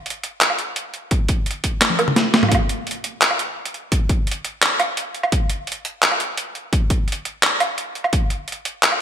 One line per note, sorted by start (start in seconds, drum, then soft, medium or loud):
0.06 closed hi-hat soft
0.10 closed hi-hat medium
0.24 closed hi-hat medium
0.41 clap loud
0.41 closed hi-hat medium
0.50 low woodblock soft
0.58 closed hi-hat medium
0.76 closed hi-hat medium
0.94 closed hi-hat soft
1.11 kick loud
1.11 closed hi-hat medium
1.28 kick loud
1.28 closed hi-hat medium
1.46 closed hi-hat medium
1.51 closed hi-hat medium
1.64 kick medium
1.64 closed hi-hat medium
1.81 snare medium
1.81 clap loud
1.81 closed hi-hat medium
1.90 high tom medium
1.99 closed hi-hat medium
1.99 low woodblock medium
2.08 mid tom medium
2.16 snare medium
2.16 closed hi-hat medium
2.34 snare loud
2.34 closed hi-hat soft
2.43 mid tom medium
2.43 low woodblock soft
2.49 kick loud
2.49 closed hi-hat medium
2.49 low woodblock soft
2.55 low woodblock medium
2.69 closed hi-hat medium
2.87 closed hi-hat medium
2.91 closed hi-hat medium
3.04 closed hi-hat medium
3.22 clap loud
3.22 closed hi-hat medium
3.31 low woodblock soft
3.39 closed hi-hat medium
3.65 closed hi-hat medium
3.74 closed hi-hat soft
3.92 kick loud
3.92 closed hi-hat medium
4.09 kick loud
4.09 closed hi-hat medium
4.27 closed hi-hat medium
4.31 closed hi-hat medium
4.45 closed hi-hat medium
4.62 clap loud
4.62 closed hi-hat medium
4.80 closed hi-hat medium
4.80 low woodblock medium
4.97 closed hi-hat medium
5.15 closed hi-hat soft
5.23 low woodblock medium
5.32 kick loud
5.32 closed hi-hat medium
5.50 closed hi-hat medium
5.67 closed hi-hat medium
5.72 closed hi-hat medium
5.85 closed hi-hat medium
6.03 clap loud
6.03 closed hi-hat medium
6.11 low woodblock soft
6.20 closed hi-hat medium
6.37 closed hi-hat medium
6.55 closed hi-hat soft
6.73 kick loud
6.73 closed hi-hat medium
6.90 kick loud
6.90 closed hi-hat medium
7.08 closed hi-hat soft
7.12 closed hi-hat medium
7.25 closed hi-hat medium
7.43 clap loud
7.43 closed hi-hat medium
7.60 closed hi-hat medium
7.60 low woodblock medium
7.78 closed hi-hat medium
7.95 closed hi-hat soft
8.04 low woodblock medium
8.13 kick loud
8.13 closed hi-hat medium
8.30 closed hi-hat medium
8.48 closed hi-hat soft
8.52 closed hi-hat medium
8.65 closed hi-hat medium
8.83 clap loud
8.83 closed hi-hat medium
8.92 low woodblock soft